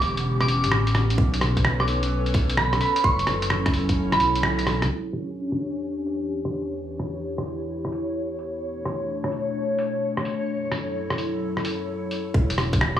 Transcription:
0.00 0.65 E1 loud
0.00 1.14 D3 medium
0.00 1.14 E3 medium
0.00 3.00 B3 medium
0.00 4.91 C#4 medium
0.00 1.14 G4 medium
0.00 0.18 D6 medium
0.00 open hi-hat medium
0.17 closed hi-hat medium
0.41 0.72 D6 medium
0.41 cross-stick soft
0.41 closed hi-hat soft
0.48 open hi-hat medium
0.63 1.17 A1 medium
0.63 closed hi-hat medium
0.72 cross-stick loud
0.87 closed hi-hat soft
0.95 cross-stick medium
0.95 open hi-hat medium
1.10 closed hi-hat medium
1.18 2.80 B1 loud
1.18 4.86 A4 medium
1.18 3.02 B4 medium
1.18 3.02 C#5 medium
1.18 kick loud
1.34 closed hi-hat soft
1.41 cross-stick medium
1.41 open hi-hat medium
1.57 kick medium
1.57 closed hi-hat medium
1.65 cross-stick loud
1.80 2.04 D6 medium
1.80 cross-stick medium
1.88 open hi-hat medium
2.03 closed hi-hat medium
2.26 closed hi-hat soft
2.34 kick loud
2.34 open hi-hat medium
2.50 closed hi-hat medium
2.57 2.70 B5 medium
2.57 cross-stick loud
2.73 cross-stick medium
2.73 closed hi-hat soft
2.81 3.03 B5 medium
2.81 open hi-hat medium
2.96 closed hi-hat medium
3.03 4.19 F#1 loud
3.03 4.88 F#3 medium
3.03 4.88 C#4 medium
3.03 4.88 E4 medium
3.03 3.29 C#6 medium
3.03 kick loud
3.19 closed hi-hat soft
3.27 cross-stick medium
3.27 open hi-hat medium
3.42 closed hi-hat medium
3.50 cross-stick loud
3.66 kick loud
3.66 cross-stick medium
3.66 closed hi-hat soft
3.74 open hi-hat medium
3.89 kick medium
3.89 closed hi-hat medium
4.12 4.44 B5 loud
4.12 cross-stick soft
4.12 closed hi-hat soft
4.20 4.83 B1 medium
4.20 open hi-hat medium
4.36 closed hi-hat medium
4.43 cross-stick loud
4.59 closed hi-hat soft
4.67 cross-stick medium
4.67 open hi-hat medium
4.82 4.89 C#2 medium
4.82 cross-stick medium
4.82 closed hi-hat medium
4.90 8.59 E2 medium
4.90 8.59 E3 medium
4.90 6.74 D4 medium
4.90 8.59 G4 medium
4.90 12.36 C#5 medium
5.13 cross-stick soft
5.13 open hi-hat medium
5.52 cross-stick soft
5.60 open hi-hat medium
6.06 open hi-hat medium
6.45 cross-stick soft
6.53 open hi-hat medium
6.77 8.61 E4 medium
7.00 cross-stick soft
7.00 open hi-hat medium
7.38 cross-stick soft
7.46 open hi-hat medium
7.85 cross-stick soft
7.92 open hi-hat medium
8.39 open hi-hat medium
8.62 10.47 B2 medium
8.62 10.46 A3 medium
8.62 10.47 D4 medium
8.62 10.47 C#5 medium
8.85 cross-stick soft
8.85 open hi-hat medium
9.24 cross-stick soft
9.32 open hi-hat medium
9.79 open hi-hat medium
10.17 cross-stick soft
10.25 open hi-hat medium
10.48 12.32 F#2 medium
10.48 12.32 F#3 medium
10.48 12.32 E4 medium
10.48 12.32 A4 medium
10.72 cross-stick soft
10.72 open hi-hat medium
11.10 cross-stick soft
11.18 open hi-hat medium
11.57 cross-stick soft
11.65 open hi-hat medium
12.11 open hi-hat medium
12.34 13.00 E1 loud
12.34 13.00 E3 medium
12.34 13.00 B3 medium
12.34 13.00 D4 medium
12.34 13.00 G4 medium
12.34 kick loud
12.50 closed hi-hat soft
12.58 cross-stick medium
12.58 open hi-hat medium
12.73 kick loud
12.73 closed hi-hat medium
12.81 cross-stick loud
12.97 13.00 D6 medium
12.97 cross-stick medium

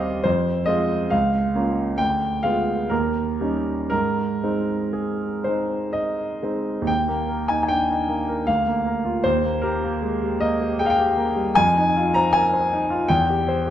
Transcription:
0.00 0.28 D#2 medium
0.00 0.28 G3 soft
0.00 0.28 C4 soft
0.00 0.28 G4 soft
0.00 0.28 D#5 medium
0.00 0.28 F5 medium
0.24 0.67 F2 medium
0.24 0.68 C5 medium
0.66 1.07 G#3 soft
0.66 1.08 C4 soft
0.66 1.08 F4 medium
0.66 1.11 D#5 medium
1.10 1.54 C#2 medium
1.10 1.98 F5 medium
1.55 1.95 A#3 soft
1.55 1.95 C#4 soft
1.55 1.96 F4 soft
1.98 2.43 D2 medium
1.98 2.43 G5 medium
2.43 2.87 G#3 soft
2.43 2.87 B3 soft
2.43 2.87 F4 soft
2.43 2.90 F5 medium
2.90 3.39 D#2 soft
2.90 3.88 A#4 medium
3.41 3.87 G3 soft
3.41 3.88 C#4 soft
3.41 3.88 D#4 soft
3.90 4.41 G#2 soft
3.90 4.94 A#4 medium
4.43 5.41 G#3 soft
4.43 5.42 C4 soft
4.43 5.42 D#4 soft
4.93 5.94 G#4 soft
5.44 6.39 G#3 soft
5.44 6.40 C4 soft
5.44 6.40 D#4 soft
5.44 5.94 C5 medium
5.93 6.87 D#5 medium
6.42 6.84 G#3 soft
6.42 6.84 C4 soft
6.42 6.84 D#4 soft
6.82 8.41 D#2 medium
6.87 7.49 G5 medium
7.08 7.41 A#3 soft
7.29 7.61 A#4 soft
7.48 7.81 D#4 soft
7.48 7.62 G#5 medium
7.63 7.69 G#5 soft
7.68 7.90 D4 soft
7.68 8.48 G5 medium
7.90 8.21 D#4 soft
8.09 8.40 A#3 soft
8.29 8.48 A#4 soft
8.47 9.22 D2 soft
8.47 9.24 F5 medium
8.67 8.98 A#3 soft
8.86 9.17 A#4 soft
9.05 9.24 F4 soft
9.24 11.52 D#2 medium
9.24 9.63 C5 medium
9.45 9.75 A#3 soft
9.62 9.94 G4 soft
9.62 10.39 A#4 medium
9.84 10.14 A#3 soft
10.02 10.21 G#3 soft
10.23 10.53 G4 soft
10.40 10.71 A#3 soft
10.40 10.78 D#5 medium
10.61 10.90 G4 soft
10.79 10.98 G#4 soft
10.79 10.85 G5 medium
10.86 10.91 F5 medium
10.86 11.55 G5 medium
10.99 11.29 G4 soft
11.17 11.48 A#3 soft
11.36 11.56 G3 soft
11.55 13.05 F2 medium
11.55 12.14 G#5 loud
11.77 12.07 D#4 soft
11.96 12.26 F4 soft
12.14 12.45 C5 soft
12.14 12.33 A#5 medium
12.33 12.53 A#4 soft
12.33 13.08 G#5 medium
12.53 12.83 C5 soft
12.73 13.02 D#4 soft
12.90 13.09 F4 soft
13.08 13.70 E2 medium
13.08 13.70 G5 medium
13.30 13.59 G4 soft
13.48 13.70 C5 medium
13.67 13.70 G4 medium

